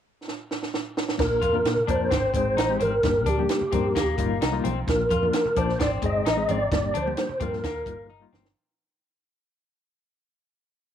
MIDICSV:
0, 0, Header, 1, 7, 480
1, 0, Start_track
1, 0, Tempo, 461184
1, 1240, Time_signature, 4, 2, 24, 8
1, 11394, End_track
2, 0, Start_track
2, 0, Title_t, "Tonewheel organ"
2, 0, Program_c, 0, 16
2, 1248, Note_on_c, 0, 70, 95
2, 1973, Note_on_c, 0, 72, 86
2, 1985, Note_off_c, 0, 70, 0
2, 2450, Note_off_c, 0, 72, 0
2, 2462, Note_on_c, 0, 72, 92
2, 2934, Note_on_c, 0, 70, 91
2, 2944, Note_off_c, 0, 72, 0
2, 3419, Note_off_c, 0, 70, 0
2, 3425, Note_on_c, 0, 67, 78
2, 4328, Note_off_c, 0, 67, 0
2, 5087, Note_on_c, 0, 70, 86
2, 5808, Note_on_c, 0, 72, 85
2, 5820, Note_off_c, 0, 70, 0
2, 6023, Note_off_c, 0, 72, 0
2, 6052, Note_on_c, 0, 74, 98
2, 6155, Note_off_c, 0, 74, 0
2, 6302, Note_on_c, 0, 75, 100
2, 6775, Note_on_c, 0, 74, 108
2, 6780, Note_off_c, 0, 75, 0
2, 7250, Note_on_c, 0, 72, 93
2, 7257, Note_off_c, 0, 74, 0
2, 7724, Note_on_c, 0, 70, 81
2, 7734, Note_off_c, 0, 72, 0
2, 8396, Note_off_c, 0, 70, 0
2, 11394, End_track
3, 0, Start_track
3, 0, Title_t, "Reed electric piano"
3, 0, Program_c, 1, 4
3, 1227, Note_on_c, 1, 58, 60
3, 1232, Note_on_c, 1, 62, 54
3, 1238, Note_on_c, 1, 65, 56
3, 1246, Note_on_c, 1, 70, 67
3, 1460, Note_off_c, 1, 58, 0
3, 1462, Note_off_c, 1, 62, 0
3, 1465, Note_off_c, 1, 65, 0
3, 1469, Note_off_c, 1, 70, 0
3, 1593, Note_on_c, 1, 58, 67
3, 1602, Note_on_c, 1, 62, 56
3, 1610, Note_on_c, 1, 65, 58
3, 1619, Note_on_c, 1, 70, 66
3, 1822, Note_off_c, 1, 58, 0
3, 1827, Note_off_c, 1, 62, 0
3, 1831, Note_off_c, 1, 65, 0
3, 1835, Note_off_c, 1, 70, 0
3, 1952, Note_on_c, 1, 58, 73
3, 1960, Note_on_c, 1, 62, 62
3, 1966, Note_on_c, 1, 65, 64
3, 1974, Note_on_c, 1, 70, 73
3, 2195, Note_off_c, 1, 58, 0
3, 2200, Note_off_c, 1, 62, 0
3, 2203, Note_off_c, 1, 65, 0
3, 2207, Note_off_c, 1, 70, 0
3, 2433, Note_on_c, 1, 56, 70
3, 2442, Note_on_c, 1, 60, 62
3, 2447, Note_on_c, 1, 63, 63
3, 2458, Note_on_c, 1, 68, 70
3, 2662, Note_off_c, 1, 56, 0
3, 2666, Note_off_c, 1, 60, 0
3, 2669, Note_off_c, 1, 63, 0
3, 2674, Note_off_c, 1, 68, 0
3, 2789, Note_on_c, 1, 56, 69
3, 2801, Note_on_c, 1, 60, 65
3, 2807, Note_on_c, 1, 63, 60
3, 2810, Note_on_c, 1, 67, 77
3, 3019, Note_off_c, 1, 56, 0
3, 3025, Note_off_c, 1, 60, 0
3, 3028, Note_off_c, 1, 63, 0
3, 3030, Note_off_c, 1, 67, 0
3, 3160, Note_on_c, 1, 55, 64
3, 3166, Note_on_c, 1, 58, 60
3, 3170, Note_on_c, 1, 62, 62
3, 3178, Note_on_c, 1, 67, 72
3, 3384, Note_off_c, 1, 55, 0
3, 3387, Note_off_c, 1, 58, 0
3, 3390, Note_off_c, 1, 62, 0
3, 3394, Note_off_c, 1, 67, 0
3, 3511, Note_on_c, 1, 55, 66
3, 3516, Note_on_c, 1, 58, 64
3, 3524, Note_on_c, 1, 62, 58
3, 3531, Note_on_c, 1, 67, 73
3, 3740, Note_off_c, 1, 55, 0
3, 3742, Note_off_c, 1, 58, 0
3, 3746, Note_off_c, 1, 62, 0
3, 3749, Note_off_c, 1, 67, 0
3, 3872, Note_on_c, 1, 55, 66
3, 3883, Note_on_c, 1, 58, 66
3, 3885, Note_on_c, 1, 62, 65
3, 3894, Note_on_c, 1, 70, 76
3, 4114, Note_off_c, 1, 55, 0
3, 4119, Note_off_c, 1, 58, 0
3, 4120, Note_off_c, 1, 62, 0
3, 4124, Note_off_c, 1, 70, 0
3, 4349, Note_on_c, 1, 55, 84
3, 4354, Note_on_c, 1, 58, 79
3, 4361, Note_on_c, 1, 63, 76
3, 4368, Note_on_c, 1, 65, 89
3, 4577, Note_off_c, 1, 55, 0
3, 4580, Note_off_c, 1, 58, 0
3, 4583, Note_off_c, 1, 63, 0
3, 4587, Note_off_c, 1, 65, 0
3, 4701, Note_on_c, 1, 55, 81
3, 4706, Note_on_c, 1, 58, 78
3, 4713, Note_on_c, 1, 63, 81
3, 4721, Note_on_c, 1, 65, 95
3, 4933, Note_off_c, 1, 55, 0
3, 4935, Note_off_c, 1, 58, 0
3, 4939, Note_off_c, 1, 63, 0
3, 4943, Note_off_c, 1, 65, 0
3, 5066, Note_on_c, 1, 53, 68
3, 5072, Note_on_c, 1, 58, 54
3, 5081, Note_on_c, 1, 62, 55
3, 5086, Note_on_c, 1, 65, 72
3, 5295, Note_off_c, 1, 53, 0
3, 5298, Note_off_c, 1, 58, 0
3, 5302, Note_off_c, 1, 62, 0
3, 5305, Note_off_c, 1, 65, 0
3, 5428, Note_on_c, 1, 53, 67
3, 5433, Note_on_c, 1, 58, 60
3, 5439, Note_on_c, 1, 62, 64
3, 5445, Note_on_c, 1, 65, 73
3, 5656, Note_off_c, 1, 53, 0
3, 5659, Note_off_c, 1, 58, 0
3, 5661, Note_off_c, 1, 62, 0
3, 5664, Note_off_c, 1, 65, 0
3, 5783, Note_on_c, 1, 53, 71
3, 5787, Note_on_c, 1, 58, 68
3, 5797, Note_on_c, 1, 62, 65
3, 5802, Note_on_c, 1, 65, 76
3, 6027, Note_off_c, 1, 53, 0
3, 6029, Note_off_c, 1, 58, 0
3, 6034, Note_off_c, 1, 62, 0
3, 6037, Note_off_c, 1, 65, 0
3, 6266, Note_on_c, 1, 60, 60
3, 6267, Note_on_c, 1, 56, 65
3, 6276, Note_on_c, 1, 63, 58
3, 6285, Note_on_c, 1, 68, 74
3, 6494, Note_off_c, 1, 60, 0
3, 6495, Note_off_c, 1, 56, 0
3, 6499, Note_off_c, 1, 63, 0
3, 6504, Note_off_c, 1, 68, 0
3, 6622, Note_on_c, 1, 56, 66
3, 6631, Note_on_c, 1, 60, 65
3, 6633, Note_on_c, 1, 63, 62
3, 6637, Note_on_c, 1, 68, 72
3, 6852, Note_off_c, 1, 56, 0
3, 6856, Note_off_c, 1, 60, 0
3, 6858, Note_off_c, 1, 63, 0
3, 6860, Note_off_c, 1, 68, 0
3, 6988, Note_on_c, 1, 55, 63
3, 6995, Note_on_c, 1, 58, 53
3, 6999, Note_on_c, 1, 62, 58
3, 7006, Note_on_c, 1, 67, 67
3, 7215, Note_off_c, 1, 55, 0
3, 7219, Note_off_c, 1, 58, 0
3, 7221, Note_off_c, 1, 62, 0
3, 7224, Note_off_c, 1, 67, 0
3, 7344, Note_on_c, 1, 55, 69
3, 7348, Note_on_c, 1, 58, 60
3, 7359, Note_on_c, 1, 62, 60
3, 7364, Note_on_c, 1, 67, 74
3, 7573, Note_off_c, 1, 55, 0
3, 7575, Note_off_c, 1, 58, 0
3, 7581, Note_off_c, 1, 62, 0
3, 7583, Note_off_c, 1, 67, 0
3, 7703, Note_on_c, 1, 55, 72
3, 7710, Note_on_c, 1, 58, 66
3, 7718, Note_on_c, 1, 62, 65
3, 7722, Note_on_c, 1, 65, 81
3, 7947, Note_off_c, 1, 55, 0
3, 7950, Note_off_c, 1, 58, 0
3, 7955, Note_off_c, 1, 62, 0
3, 7956, Note_off_c, 1, 65, 0
3, 8178, Note_on_c, 1, 55, 67
3, 8186, Note_on_c, 1, 58, 58
3, 8190, Note_on_c, 1, 63, 66
3, 8198, Note_on_c, 1, 65, 69
3, 8411, Note_off_c, 1, 55, 0
3, 8415, Note_off_c, 1, 58, 0
3, 8417, Note_off_c, 1, 63, 0
3, 8421, Note_off_c, 1, 65, 0
3, 8534, Note_on_c, 1, 55, 83
3, 8539, Note_on_c, 1, 58, 73
3, 8548, Note_on_c, 1, 63, 71
3, 8555, Note_on_c, 1, 65, 93
3, 8769, Note_off_c, 1, 55, 0
3, 8771, Note_off_c, 1, 58, 0
3, 8776, Note_off_c, 1, 63, 0
3, 8779, Note_off_c, 1, 65, 0
3, 11394, End_track
4, 0, Start_track
4, 0, Title_t, "Clean electric guitar"
4, 0, Program_c, 2, 27
4, 1473, Note_on_c, 2, 65, 78
4, 1626, Note_off_c, 2, 65, 0
4, 1950, Note_on_c, 2, 62, 81
4, 2104, Note_off_c, 2, 62, 0
4, 2192, Note_on_c, 2, 60, 74
4, 2646, Note_off_c, 2, 60, 0
4, 2674, Note_on_c, 2, 63, 71
4, 2826, Note_off_c, 2, 63, 0
4, 2909, Note_on_c, 2, 60, 69
4, 3063, Note_off_c, 2, 60, 0
4, 3394, Note_on_c, 2, 62, 80
4, 3545, Note_off_c, 2, 62, 0
4, 3873, Note_on_c, 2, 60, 83
4, 4025, Note_off_c, 2, 60, 0
4, 4113, Note_on_c, 2, 58, 76
4, 4564, Note_off_c, 2, 58, 0
4, 4592, Note_on_c, 2, 63, 76
4, 4743, Note_off_c, 2, 63, 0
4, 4828, Note_on_c, 2, 60, 71
4, 4980, Note_off_c, 2, 60, 0
4, 5316, Note_on_c, 2, 65, 80
4, 5466, Note_off_c, 2, 65, 0
4, 5798, Note_on_c, 2, 62, 81
4, 5947, Note_off_c, 2, 62, 0
4, 6030, Note_on_c, 2, 60, 70
4, 6481, Note_off_c, 2, 60, 0
4, 6513, Note_on_c, 2, 63, 73
4, 6663, Note_off_c, 2, 63, 0
4, 6749, Note_on_c, 2, 60, 70
4, 6901, Note_off_c, 2, 60, 0
4, 7222, Note_on_c, 2, 62, 79
4, 7376, Note_off_c, 2, 62, 0
4, 7700, Note_on_c, 2, 60, 78
4, 7855, Note_off_c, 2, 60, 0
4, 7948, Note_on_c, 2, 58, 71
4, 8401, Note_off_c, 2, 58, 0
4, 8426, Note_on_c, 2, 63, 73
4, 8579, Note_off_c, 2, 63, 0
4, 8666, Note_on_c, 2, 60, 74
4, 8819, Note_off_c, 2, 60, 0
4, 11394, End_track
5, 0, Start_track
5, 0, Title_t, "Fingered electric bass"
5, 0, Program_c, 3, 33
5, 1237, Note_on_c, 3, 34, 84
5, 1476, Note_on_c, 3, 41, 77
5, 1491, Note_off_c, 3, 34, 0
5, 1671, Note_off_c, 3, 41, 0
5, 1714, Note_on_c, 3, 46, 82
5, 1910, Note_off_c, 3, 46, 0
5, 1962, Note_on_c, 3, 41, 76
5, 2154, Note_off_c, 3, 41, 0
5, 2202, Note_on_c, 3, 32, 88
5, 2395, Note_off_c, 3, 32, 0
5, 2433, Note_on_c, 3, 32, 76
5, 2629, Note_off_c, 3, 32, 0
5, 2670, Note_on_c, 3, 33, 81
5, 2867, Note_off_c, 3, 33, 0
5, 2914, Note_on_c, 3, 32, 83
5, 3109, Note_off_c, 3, 32, 0
5, 3154, Note_on_c, 3, 31, 92
5, 3394, Note_off_c, 3, 31, 0
5, 3394, Note_on_c, 3, 38, 74
5, 3589, Note_off_c, 3, 38, 0
5, 3878, Note_on_c, 3, 43, 76
5, 4070, Note_off_c, 3, 43, 0
5, 4118, Note_on_c, 3, 39, 91
5, 4310, Note_off_c, 3, 39, 0
5, 4350, Note_on_c, 3, 31, 81
5, 4545, Note_off_c, 3, 31, 0
5, 4598, Note_on_c, 3, 36, 91
5, 4790, Note_off_c, 3, 36, 0
5, 4834, Note_on_c, 3, 35, 81
5, 5027, Note_off_c, 3, 35, 0
5, 5075, Note_on_c, 3, 34, 93
5, 5267, Note_off_c, 3, 34, 0
5, 5312, Note_on_c, 3, 41, 83
5, 5505, Note_off_c, 3, 41, 0
5, 5793, Note_on_c, 3, 34, 78
5, 5986, Note_off_c, 3, 34, 0
5, 6031, Note_on_c, 3, 32, 88
5, 6225, Note_off_c, 3, 32, 0
5, 6261, Note_on_c, 3, 31, 72
5, 6459, Note_off_c, 3, 31, 0
5, 6515, Note_on_c, 3, 33, 89
5, 6706, Note_off_c, 3, 33, 0
5, 6752, Note_on_c, 3, 32, 80
5, 6945, Note_off_c, 3, 32, 0
5, 6989, Note_on_c, 3, 31, 95
5, 7183, Note_off_c, 3, 31, 0
5, 7232, Note_on_c, 3, 38, 86
5, 7425, Note_off_c, 3, 38, 0
5, 7708, Note_on_c, 3, 43, 79
5, 7903, Note_off_c, 3, 43, 0
5, 7949, Note_on_c, 3, 39, 82
5, 8144, Note_off_c, 3, 39, 0
5, 8180, Note_on_c, 3, 31, 69
5, 8572, Note_off_c, 3, 31, 0
5, 8664, Note_on_c, 3, 31, 73
5, 8861, Note_off_c, 3, 31, 0
5, 11394, End_track
6, 0, Start_track
6, 0, Title_t, "Muted fingered electric bass strokes"
6, 3761, Note_on_c, 9, 29, 43
6, 3865, Note_off_c, 9, 29, 0
6, 5672, Note_on_c, 9, 29, 43
6, 5776, Note_off_c, 9, 29, 0
6, 7589, Note_on_c, 9, 29, 43
6, 7693, Note_off_c, 9, 29, 0
6, 11394, End_track
7, 0, Start_track
7, 0, Title_t, "Drums"
7, 292, Note_on_c, 9, 38, 52
7, 396, Note_off_c, 9, 38, 0
7, 530, Note_on_c, 9, 38, 66
7, 635, Note_off_c, 9, 38, 0
7, 652, Note_on_c, 9, 38, 60
7, 756, Note_off_c, 9, 38, 0
7, 769, Note_on_c, 9, 38, 82
7, 874, Note_off_c, 9, 38, 0
7, 1011, Note_on_c, 9, 38, 92
7, 1115, Note_off_c, 9, 38, 0
7, 1130, Note_on_c, 9, 38, 89
7, 1234, Note_off_c, 9, 38, 0
7, 1239, Note_on_c, 9, 49, 79
7, 1240, Note_on_c, 9, 36, 99
7, 1244, Note_on_c, 9, 64, 58
7, 1248, Note_on_c, 9, 38, 83
7, 1343, Note_off_c, 9, 49, 0
7, 1344, Note_off_c, 9, 36, 0
7, 1348, Note_off_c, 9, 64, 0
7, 1352, Note_off_c, 9, 38, 0
7, 1477, Note_on_c, 9, 36, 72
7, 1480, Note_on_c, 9, 42, 66
7, 1482, Note_on_c, 9, 62, 31
7, 1482, Note_on_c, 9, 63, 68
7, 1581, Note_off_c, 9, 36, 0
7, 1584, Note_off_c, 9, 42, 0
7, 1586, Note_off_c, 9, 62, 0
7, 1586, Note_off_c, 9, 63, 0
7, 1603, Note_on_c, 9, 63, 68
7, 1708, Note_off_c, 9, 63, 0
7, 1720, Note_on_c, 9, 42, 75
7, 1723, Note_on_c, 9, 62, 34
7, 1728, Note_on_c, 9, 38, 102
7, 1824, Note_off_c, 9, 42, 0
7, 1827, Note_off_c, 9, 62, 0
7, 1832, Note_off_c, 9, 38, 0
7, 1837, Note_on_c, 9, 64, 64
7, 1941, Note_off_c, 9, 64, 0
7, 1960, Note_on_c, 9, 62, 31
7, 1960, Note_on_c, 9, 63, 64
7, 1961, Note_on_c, 9, 36, 82
7, 1963, Note_on_c, 9, 42, 63
7, 2064, Note_off_c, 9, 62, 0
7, 2064, Note_off_c, 9, 63, 0
7, 2065, Note_off_c, 9, 36, 0
7, 2067, Note_off_c, 9, 42, 0
7, 2201, Note_on_c, 9, 36, 90
7, 2204, Note_on_c, 9, 42, 78
7, 2207, Note_on_c, 9, 38, 102
7, 2207, Note_on_c, 9, 62, 29
7, 2207, Note_on_c, 9, 63, 46
7, 2207, Note_on_c, 9, 64, 64
7, 2305, Note_off_c, 9, 36, 0
7, 2308, Note_off_c, 9, 42, 0
7, 2311, Note_off_c, 9, 38, 0
7, 2311, Note_off_c, 9, 62, 0
7, 2311, Note_off_c, 9, 63, 0
7, 2311, Note_off_c, 9, 64, 0
7, 2432, Note_on_c, 9, 36, 75
7, 2437, Note_on_c, 9, 42, 69
7, 2447, Note_on_c, 9, 62, 24
7, 2536, Note_off_c, 9, 36, 0
7, 2541, Note_off_c, 9, 42, 0
7, 2551, Note_off_c, 9, 62, 0
7, 2684, Note_on_c, 9, 42, 81
7, 2689, Note_on_c, 9, 62, 31
7, 2691, Note_on_c, 9, 38, 113
7, 2788, Note_off_c, 9, 42, 0
7, 2793, Note_off_c, 9, 62, 0
7, 2795, Note_off_c, 9, 38, 0
7, 2917, Note_on_c, 9, 42, 58
7, 2931, Note_on_c, 9, 62, 30
7, 2931, Note_on_c, 9, 63, 64
7, 3021, Note_off_c, 9, 42, 0
7, 3035, Note_off_c, 9, 62, 0
7, 3035, Note_off_c, 9, 63, 0
7, 3155, Note_on_c, 9, 42, 66
7, 3157, Note_on_c, 9, 36, 100
7, 3163, Note_on_c, 9, 38, 84
7, 3166, Note_on_c, 9, 64, 63
7, 3259, Note_off_c, 9, 42, 0
7, 3261, Note_off_c, 9, 36, 0
7, 3267, Note_off_c, 9, 38, 0
7, 3270, Note_off_c, 9, 64, 0
7, 3394, Note_on_c, 9, 36, 71
7, 3395, Note_on_c, 9, 42, 66
7, 3405, Note_on_c, 9, 62, 30
7, 3405, Note_on_c, 9, 63, 71
7, 3498, Note_off_c, 9, 36, 0
7, 3499, Note_off_c, 9, 42, 0
7, 3509, Note_off_c, 9, 62, 0
7, 3509, Note_off_c, 9, 63, 0
7, 3525, Note_on_c, 9, 63, 67
7, 3629, Note_off_c, 9, 63, 0
7, 3631, Note_on_c, 9, 42, 78
7, 3640, Note_on_c, 9, 38, 102
7, 3644, Note_on_c, 9, 62, 33
7, 3736, Note_off_c, 9, 42, 0
7, 3744, Note_off_c, 9, 38, 0
7, 3749, Note_off_c, 9, 62, 0
7, 3759, Note_on_c, 9, 64, 59
7, 3863, Note_off_c, 9, 64, 0
7, 3875, Note_on_c, 9, 42, 63
7, 3875, Note_on_c, 9, 62, 28
7, 3875, Note_on_c, 9, 63, 69
7, 3878, Note_on_c, 9, 36, 81
7, 3979, Note_off_c, 9, 42, 0
7, 3979, Note_off_c, 9, 62, 0
7, 3979, Note_off_c, 9, 63, 0
7, 3982, Note_off_c, 9, 36, 0
7, 4117, Note_on_c, 9, 63, 47
7, 4117, Note_on_c, 9, 64, 64
7, 4120, Note_on_c, 9, 36, 78
7, 4124, Note_on_c, 9, 42, 84
7, 4127, Note_on_c, 9, 38, 98
7, 4221, Note_off_c, 9, 63, 0
7, 4221, Note_off_c, 9, 64, 0
7, 4224, Note_off_c, 9, 36, 0
7, 4228, Note_off_c, 9, 42, 0
7, 4231, Note_off_c, 9, 38, 0
7, 4349, Note_on_c, 9, 36, 76
7, 4353, Note_on_c, 9, 42, 68
7, 4359, Note_on_c, 9, 62, 26
7, 4453, Note_off_c, 9, 36, 0
7, 4457, Note_off_c, 9, 42, 0
7, 4463, Note_off_c, 9, 62, 0
7, 4597, Note_on_c, 9, 42, 86
7, 4604, Note_on_c, 9, 38, 113
7, 4604, Note_on_c, 9, 62, 33
7, 4701, Note_off_c, 9, 42, 0
7, 4708, Note_off_c, 9, 38, 0
7, 4708, Note_off_c, 9, 62, 0
7, 4834, Note_on_c, 9, 42, 61
7, 4845, Note_on_c, 9, 62, 31
7, 4845, Note_on_c, 9, 63, 69
7, 4938, Note_off_c, 9, 42, 0
7, 4949, Note_off_c, 9, 62, 0
7, 4949, Note_off_c, 9, 63, 0
7, 5073, Note_on_c, 9, 62, 29
7, 5073, Note_on_c, 9, 64, 64
7, 5076, Note_on_c, 9, 36, 106
7, 5081, Note_on_c, 9, 42, 70
7, 5090, Note_on_c, 9, 38, 81
7, 5177, Note_off_c, 9, 62, 0
7, 5177, Note_off_c, 9, 64, 0
7, 5180, Note_off_c, 9, 36, 0
7, 5185, Note_off_c, 9, 42, 0
7, 5194, Note_off_c, 9, 38, 0
7, 5313, Note_on_c, 9, 36, 78
7, 5317, Note_on_c, 9, 42, 63
7, 5318, Note_on_c, 9, 62, 30
7, 5318, Note_on_c, 9, 63, 72
7, 5417, Note_off_c, 9, 36, 0
7, 5421, Note_off_c, 9, 42, 0
7, 5422, Note_off_c, 9, 62, 0
7, 5422, Note_off_c, 9, 63, 0
7, 5443, Note_on_c, 9, 63, 68
7, 5548, Note_off_c, 9, 63, 0
7, 5549, Note_on_c, 9, 42, 78
7, 5558, Note_on_c, 9, 38, 100
7, 5566, Note_on_c, 9, 62, 34
7, 5653, Note_off_c, 9, 42, 0
7, 5662, Note_off_c, 9, 38, 0
7, 5670, Note_off_c, 9, 62, 0
7, 5676, Note_on_c, 9, 64, 65
7, 5780, Note_off_c, 9, 64, 0
7, 5789, Note_on_c, 9, 42, 66
7, 5793, Note_on_c, 9, 36, 83
7, 5799, Note_on_c, 9, 62, 31
7, 5799, Note_on_c, 9, 63, 67
7, 5893, Note_off_c, 9, 42, 0
7, 5897, Note_off_c, 9, 36, 0
7, 5903, Note_off_c, 9, 62, 0
7, 5903, Note_off_c, 9, 63, 0
7, 5921, Note_on_c, 9, 38, 30
7, 6025, Note_off_c, 9, 38, 0
7, 6035, Note_on_c, 9, 36, 85
7, 6040, Note_on_c, 9, 42, 76
7, 6042, Note_on_c, 9, 38, 109
7, 6043, Note_on_c, 9, 62, 28
7, 6043, Note_on_c, 9, 63, 45
7, 6043, Note_on_c, 9, 64, 64
7, 6139, Note_off_c, 9, 36, 0
7, 6144, Note_off_c, 9, 42, 0
7, 6147, Note_off_c, 9, 38, 0
7, 6147, Note_off_c, 9, 62, 0
7, 6147, Note_off_c, 9, 63, 0
7, 6147, Note_off_c, 9, 64, 0
7, 6265, Note_on_c, 9, 36, 73
7, 6268, Note_on_c, 9, 42, 74
7, 6286, Note_on_c, 9, 62, 27
7, 6369, Note_off_c, 9, 36, 0
7, 6372, Note_off_c, 9, 42, 0
7, 6390, Note_off_c, 9, 62, 0
7, 6516, Note_on_c, 9, 42, 93
7, 6523, Note_on_c, 9, 38, 114
7, 6523, Note_on_c, 9, 62, 33
7, 6620, Note_off_c, 9, 42, 0
7, 6627, Note_off_c, 9, 38, 0
7, 6627, Note_off_c, 9, 62, 0
7, 6749, Note_on_c, 9, 42, 59
7, 6761, Note_on_c, 9, 62, 31
7, 6761, Note_on_c, 9, 63, 68
7, 6853, Note_off_c, 9, 42, 0
7, 6865, Note_off_c, 9, 62, 0
7, 6865, Note_off_c, 9, 63, 0
7, 6989, Note_on_c, 9, 36, 95
7, 6991, Note_on_c, 9, 42, 63
7, 6993, Note_on_c, 9, 62, 28
7, 6993, Note_on_c, 9, 64, 63
7, 6999, Note_on_c, 9, 38, 87
7, 7093, Note_off_c, 9, 36, 0
7, 7095, Note_off_c, 9, 42, 0
7, 7097, Note_off_c, 9, 62, 0
7, 7097, Note_off_c, 9, 64, 0
7, 7104, Note_off_c, 9, 38, 0
7, 7230, Note_on_c, 9, 42, 69
7, 7239, Note_on_c, 9, 62, 31
7, 7239, Note_on_c, 9, 63, 71
7, 7334, Note_off_c, 9, 42, 0
7, 7343, Note_off_c, 9, 62, 0
7, 7343, Note_off_c, 9, 63, 0
7, 7363, Note_on_c, 9, 63, 71
7, 7462, Note_on_c, 9, 42, 79
7, 7467, Note_off_c, 9, 63, 0
7, 7470, Note_on_c, 9, 38, 102
7, 7566, Note_off_c, 9, 42, 0
7, 7575, Note_off_c, 9, 38, 0
7, 7589, Note_on_c, 9, 64, 67
7, 7693, Note_off_c, 9, 64, 0
7, 7706, Note_on_c, 9, 42, 67
7, 7707, Note_on_c, 9, 36, 89
7, 7710, Note_on_c, 9, 62, 30
7, 7710, Note_on_c, 9, 63, 68
7, 7810, Note_off_c, 9, 42, 0
7, 7812, Note_off_c, 9, 36, 0
7, 7815, Note_off_c, 9, 62, 0
7, 7815, Note_off_c, 9, 63, 0
7, 7837, Note_on_c, 9, 38, 30
7, 7941, Note_off_c, 9, 38, 0
7, 7949, Note_on_c, 9, 36, 81
7, 7953, Note_on_c, 9, 42, 77
7, 7953, Note_on_c, 9, 63, 42
7, 7953, Note_on_c, 9, 64, 64
7, 7956, Note_on_c, 9, 38, 103
7, 8053, Note_off_c, 9, 36, 0
7, 8057, Note_off_c, 9, 42, 0
7, 8057, Note_off_c, 9, 63, 0
7, 8057, Note_off_c, 9, 64, 0
7, 8060, Note_off_c, 9, 38, 0
7, 8181, Note_on_c, 9, 36, 76
7, 8187, Note_on_c, 9, 42, 77
7, 8193, Note_on_c, 9, 62, 27
7, 8285, Note_off_c, 9, 36, 0
7, 8291, Note_off_c, 9, 42, 0
7, 8297, Note_off_c, 9, 62, 0
7, 8433, Note_on_c, 9, 62, 32
7, 8537, Note_off_c, 9, 62, 0
7, 8673, Note_on_c, 9, 62, 30
7, 8673, Note_on_c, 9, 63, 64
7, 8678, Note_on_c, 9, 38, 84
7, 8777, Note_off_c, 9, 62, 0
7, 8777, Note_off_c, 9, 63, 0
7, 8782, Note_off_c, 9, 38, 0
7, 8796, Note_on_c, 9, 38, 87
7, 8900, Note_off_c, 9, 38, 0
7, 11394, End_track
0, 0, End_of_file